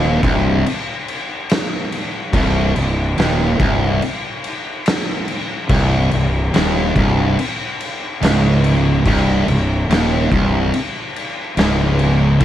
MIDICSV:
0, 0, Header, 1, 4, 480
1, 0, Start_track
1, 0, Tempo, 840336
1, 1335, Time_signature, 4, 2, 24, 8
1, 7110, End_track
2, 0, Start_track
2, 0, Title_t, "Distorted electric guitar"
2, 0, Program_c, 0, 30
2, 0, Note_on_c, 0, 39, 110
2, 125, Note_off_c, 0, 39, 0
2, 130, Note_on_c, 0, 36, 111
2, 365, Note_off_c, 0, 36, 0
2, 1330, Note_on_c, 0, 36, 113
2, 1565, Note_off_c, 0, 36, 0
2, 1572, Note_on_c, 0, 36, 82
2, 1766, Note_off_c, 0, 36, 0
2, 1816, Note_on_c, 0, 39, 112
2, 2049, Note_off_c, 0, 39, 0
2, 2052, Note_on_c, 0, 36, 110
2, 2287, Note_off_c, 0, 36, 0
2, 3252, Note_on_c, 0, 36, 118
2, 3484, Note_off_c, 0, 36, 0
2, 3491, Note_on_c, 0, 36, 83
2, 3685, Note_off_c, 0, 36, 0
2, 3734, Note_on_c, 0, 39, 107
2, 3968, Note_off_c, 0, 39, 0
2, 3972, Note_on_c, 0, 36, 104
2, 4206, Note_off_c, 0, 36, 0
2, 4691, Note_on_c, 0, 37, 112
2, 5165, Note_off_c, 0, 37, 0
2, 5176, Note_on_c, 0, 36, 111
2, 5407, Note_off_c, 0, 36, 0
2, 5414, Note_on_c, 0, 36, 84
2, 5605, Note_off_c, 0, 36, 0
2, 5654, Note_on_c, 0, 39, 102
2, 5885, Note_off_c, 0, 39, 0
2, 5894, Note_on_c, 0, 36, 102
2, 6126, Note_off_c, 0, 36, 0
2, 6613, Note_on_c, 0, 37, 114
2, 7083, Note_off_c, 0, 37, 0
2, 7091, Note_on_c, 0, 45, 111
2, 7110, Note_off_c, 0, 45, 0
2, 7110, End_track
3, 0, Start_track
3, 0, Title_t, "Fingered electric bass"
3, 0, Program_c, 1, 33
3, 0, Note_on_c, 1, 27, 92
3, 116, Note_off_c, 1, 27, 0
3, 131, Note_on_c, 1, 24, 98
3, 356, Note_off_c, 1, 24, 0
3, 1330, Note_on_c, 1, 24, 98
3, 1556, Note_off_c, 1, 24, 0
3, 1582, Note_on_c, 1, 24, 93
3, 1802, Note_off_c, 1, 24, 0
3, 1820, Note_on_c, 1, 27, 90
3, 2041, Note_off_c, 1, 27, 0
3, 2054, Note_on_c, 1, 24, 106
3, 2278, Note_off_c, 1, 24, 0
3, 3251, Note_on_c, 1, 24, 105
3, 3477, Note_off_c, 1, 24, 0
3, 3503, Note_on_c, 1, 24, 96
3, 3723, Note_off_c, 1, 24, 0
3, 3743, Note_on_c, 1, 27, 90
3, 3962, Note_off_c, 1, 27, 0
3, 3974, Note_on_c, 1, 24, 100
3, 4198, Note_off_c, 1, 24, 0
3, 4695, Note_on_c, 1, 25, 105
3, 5151, Note_off_c, 1, 25, 0
3, 5174, Note_on_c, 1, 24, 104
3, 5397, Note_off_c, 1, 24, 0
3, 5411, Note_on_c, 1, 24, 89
3, 5635, Note_off_c, 1, 24, 0
3, 5651, Note_on_c, 1, 27, 93
3, 5875, Note_off_c, 1, 27, 0
3, 5891, Note_on_c, 1, 24, 97
3, 6114, Note_off_c, 1, 24, 0
3, 6607, Note_on_c, 1, 25, 102
3, 7064, Note_off_c, 1, 25, 0
3, 7087, Note_on_c, 1, 33, 93
3, 7110, Note_off_c, 1, 33, 0
3, 7110, End_track
4, 0, Start_track
4, 0, Title_t, "Drums"
4, 132, Note_on_c, 9, 36, 114
4, 138, Note_on_c, 9, 49, 71
4, 189, Note_off_c, 9, 36, 0
4, 195, Note_off_c, 9, 49, 0
4, 379, Note_on_c, 9, 49, 84
4, 436, Note_off_c, 9, 49, 0
4, 618, Note_on_c, 9, 49, 67
4, 675, Note_off_c, 9, 49, 0
4, 854, Note_on_c, 9, 49, 93
4, 866, Note_on_c, 9, 38, 121
4, 911, Note_off_c, 9, 49, 0
4, 923, Note_off_c, 9, 38, 0
4, 1098, Note_on_c, 9, 49, 69
4, 1155, Note_off_c, 9, 49, 0
4, 1333, Note_on_c, 9, 36, 119
4, 1335, Note_on_c, 9, 49, 94
4, 1390, Note_off_c, 9, 36, 0
4, 1392, Note_off_c, 9, 49, 0
4, 1575, Note_on_c, 9, 49, 67
4, 1632, Note_off_c, 9, 49, 0
4, 1815, Note_on_c, 9, 49, 77
4, 1827, Note_on_c, 9, 38, 116
4, 1872, Note_off_c, 9, 49, 0
4, 1884, Note_off_c, 9, 38, 0
4, 2055, Note_on_c, 9, 36, 115
4, 2058, Note_on_c, 9, 49, 66
4, 2112, Note_off_c, 9, 36, 0
4, 2115, Note_off_c, 9, 49, 0
4, 2297, Note_on_c, 9, 49, 79
4, 2354, Note_off_c, 9, 49, 0
4, 2535, Note_on_c, 9, 49, 64
4, 2592, Note_off_c, 9, 49, 0
4, 2774, Note_on_c, 9, 49, 92
4, 2786, Note_on_c, 9, 38, 124
4, 2831, Note_off_c, 9, 49, 0
4, 2843, Note_off_c, 9, 38, 0
4, 3014, Note_on_c, 9, 49, 69
4, 3072, Note_off_c, 9, 49, 0
4, 3251, Note_on_c, 9, 49, 94
4, 3254, Note_on_c, 9, 36, 123
4, 3308, Note_off_c, 9, 49, 0
4, 3311, Note_off_c, 9, 36, 0
4, 3492, Note_on_c, 9, 49, 70
4, 3549, Note_off_c, 9, 49, 0
4, 3735, Note_on_c, 9, 49, 86
4, 3747, Note_on_c, 9, 38, 112
4, 3792, Note_off_c, 9, 49, 0
4, 3804, Note_off_c, 9, 38, 0
4, 3974, Note_on_c, 9, 36, 110
4, 3975, Note_on_c, 9, 49, 65
4, 4031, Note_off_c, 9, 36, 0
4, 4032, Note_off_c, 9, 49, 0
4, 4220, Note_on_c, 9, 49, 87
4, 4277, Note_off_c, 9, 49, 0
4, 4457, Note_on_c, 9, 49, 70
4, 4514, Note_off_c, 9, 49, 0
4, 4697, Note_on_c, 9, 49, 101
4, 4709, Note_on_c, 9, 38, 124
4, 4755, Note_off_c, 9, 49, 0
4, 4767, Note_off_c, 9, 38, 0
4, 4935, Note_on_c, 9, 49, 75
4, 4992, Note_off_c, 9, 49, 0
4, 5173, Note_on_c, 9, 36, 112
4, 5173, Note_on_c, 9, 49, 99
4, 5230, Note_off_c, 9, 36, 0
4, 5230, Note_off_c, 9, 49, 0
4, 5415, Note_on_c, 9, 49, 70
4, 5473, Note_off_c, 9, 49, 0
4, 5658, Note_on_c, 9, 49, 87
4, 5670, Note_on_c, 9, 38, 115
4, 5715, Note_off_c, 9, 49, 0
4, 5727, Note_off_c, 9, 38, 0
4, 5893, Note_on_c, 9, 36, 113
4, 5895, Note_on_c, 9, 49, 64
4, 5950, Note_off_c, 9, 36, 0
4, 5952, Note_off_c, 9, 49, 0
4, 6132, Note_on_c, 9, 49, 81
4, 6189, Note_off_c, 9, 49, 0
4, 6376, Note_on_c, 9, 49, 62
4, 6433, Note_off_c, 9, 49, 0
4, 6609, Note_on_c, 9, 49, 86
4, 6621, Note_on_c, 9, 38, 113
4, 6666, Note_off_c, 9, 49, 0
4, 6678, Note_off_c, 9, 38, 0
4, 6849, Note_on_c, 9, 49, 64
4, 6906, Note_off_c, 9, 49, 0
4, 7085, Note_on_c, 9, 49, 91
4, 7087, Note_on_c, 9, 36, 113
4, 7110, Note_off_c, 9, 36, 0
4, 7110, Note_off_c, 9, 49, 0
4, 7110, End_track
0, 0, End_of_file